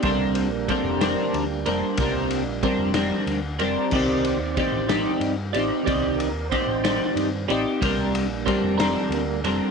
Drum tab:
CC |------|------|x-----|------|
RD |xxxxxx|xxxxxx|-xxxxx|xxxxxx|
SD |---o--|---o--|---o--|---o--|
BD |o-o---|o-o---|o-o---|o-o---|

CC |------|
RD |xxxxxx|
SD |---o--|
BD |o-o---|